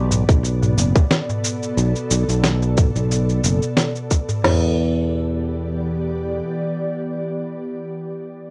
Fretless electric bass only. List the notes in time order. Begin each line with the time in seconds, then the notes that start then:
Already playing: B1
0.29 B1
0.78 F#1
1.77 B1
2.11 B1
2.28 B1
2.96 B1
3.44 F#1
4.44 E2